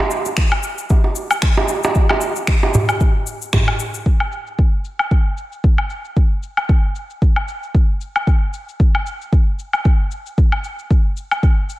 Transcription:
0.11 cabasa
0.26 darbuka ka, cabasa
0.37 finger snap, kick, cabasa
0.52 low woodblock
0.63 cabasa
0.78 cabasa
0.90 kick, darbuka tek, cabasa
1.04 darbuka ka
1.15 cabasa
1.31 cabasa, low woodblock
1.42 finger snap, kick, cabasa
1.57 darbuka ka, darbuka tek
1.68 darbuka ka, cabasa
1.83 darbuka tek, cabasa
1.95 kick, cabasa
2.09 darbuka tek, low woodblock
2.21 cabasa
2.36 cabasa
2.47 finger snap, kick, cabasa
2.63 darbuka tek
2.74 darbuka ka, darbuka dum, cabasa
2.89 cabasa, low woodblock
3.01 kick, cabasa
3.27 cabasa
3.42 cabasa
3.53 finger snap, kick, darbuka tek, darbuka dum, cabasa
3.68 low woodblock
3.79 cabasa
3.94 cabasa
4.06 kick, cabasa
4.20 low woodblock
4.32 cabasa
4.47 cabasa
4.58 kick, cabasa
4.85 cabasa
4.99 cabasa, low woodblock
5.11 kick, cabasa
5.37 cabasa
5.52 cabasa
5.64 kick, cabasa
5.78 low woodblock
5.90 cabasa
6.05 cabasa
6.16 kick, cabasa
6.43 cabasa
6.57 cabasa, low woodblock
6.69 kick, cabasa
6.95 cabasa
7.10 cabasa
7.22 kick, cabasa
7.36 low woodblock
7.48 cabasa
7.63 cabasa
7.75 kick, cabasa
8.01 cabasa
8.16 cabasa, low woodblock
8.27 kick, cabasa
8.53 cabasa
8.69 cabasa
8.80 kick, cabasa
8.95 low woodblock
9.06 cabasa
9.21 cabasa
9.33 kick, cabasa
9.59 cabasa
9.73 cabasa, low woodblock
9.85 kick, cabasa
10.11 cabasa
10.26 cabasa
10.38 kick, cabasa
10.52 low woodblock
10.64 cabasa
10.79 cabasa
10.91 kick, cabasa
11.17 cabasa
11.31 cabasa, low woodblock
11.43 kick, cabasa
11.70 cabasa

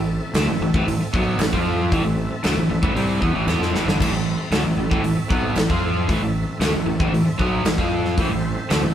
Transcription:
Already playing: A1 A2 E3 C4 A4 E5
0.34 D2 D3 A3, snare, clap, open hi-hat
0.47 A1 A2 E3
0.61 A1 A2 E3
0.74 A1 A2 E3, kick
0.87 A1 A2 E3, open hi-hat
1.00 muted fingered electric bass stroke, muted overdriven electric guitar stroke
1.13 B1 B2 F#3 B3, kick
1.39 A1 A2 E3, snare, clap, open hi-hat
1.53 F2 F3 C4 F4, kick
1.92 A1 A2 E3, kick, open hi-hat
2.05 A1 A2 E3
2.43 D2 D3 A3, snare, clap, open hi-hat
2.57 A1 A2 E3
2.69 A1 A2 E3
2.82 A1 A2 E3, kick
2.95 C2 C3 G3 C4, open hi-hat
3.21 E2 E3 B3, kick
3.33 A1 A2 E3
3.47 E2 E3 B3, snare, clap
3.60 F2 F3 C4, snare
3.73 A1 A2 E3, snare
3.86 G1 G2 D3, snare
4.00 A1 A2 E3 C4 A4 E5, kick, open hi-hat, crash
4.10 A1 A2 E3
4.51 D2 D3 A3, snare, clap, open hi-hat
4.62 A1 A2 E3
4.77 A1 A2 E3
4.91 A1 A2 E3, kick
5.02 A1 A2 E3, open hi-hat
5.16 muted fingered electric bass stroke, muted overdriven electric guitar stroke
5.30 B1 B2 F#3 B3, kick
5.55 A1 A2 E3, snare, clap, open hi-hat
5.69 F2 F3 C4 F4, kick
6.08 A1 A2 E3, kick, open hi-hat
6.20 A1 A2 E3
6.60 D2 D3 A3, snare, clap, open hi-hat
6.73 A1 A2 E3
6.86 A1 A2 E3
6.99 A1 A2 E3, kick
7.12 A1 A2 E3, open hi-hat
7.25 muted fingered electric bass stroke, muted overdriven electric guitar stroke
7.38 B1 B2 F#3 B3, kick
7.65 A1 A2 E3, snare, clap, open hi-hat
7.78 F2 F3 C4 F4, kick
8.05 snare
8.17 A1 A2 E3 C4 A4 C5 E5, kick, open hi-hat
8.31 A1 A2 E3
8.69 D2 D3 A3, snare, clap, open hi-hat
8.83 A1 A2 E3

